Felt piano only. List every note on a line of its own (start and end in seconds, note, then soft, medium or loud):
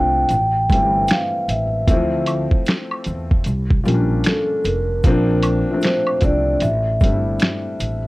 0.00 0.32 A3 loud
0.00 0.32 C4 loud
0.00 0.32 D4 loud
0.00 0.32 F4 loud
0.70 1.63 E3 medium
0.70 1.61 G3 medium
0.70 1.62 A3 medium
0.70 1.62 C4 medium
1.87 1.96 E3 medium
1.87 3.07 A3 medium
1.87 3.07 C4 medium
1.87 3.08 E4 loud
1.94 3.10 F3 loud
3.84 4.76 F3 medium
3.84 4.77 G3 medium
3.84 4.77 A#3 medium
3.84 3.95 C#4 medium
3.94 4.81 D4 medium
5.04 5.50 F3 loud
5.04 5.50 A#3 loud
5.04 5.51 C4 loud
5.04 5.52 D4 loud
5.71 6.13 F3 medium
5.71 6.13 A3 medium
5.71 6.14 C4 medium
5.71 6.14 D4 medium
6.21 6.61 F3 medium
6.21 6.62 A3 medium
6.21 6.62 C4 medium
6.21 6.63 D4 medium
7.01 7.93 G3 medium
7.01 7.93 A3 medium
7.01 7.94 C4 medium
7.01 7.11 D4 medium
7.11 7.98 E4 medium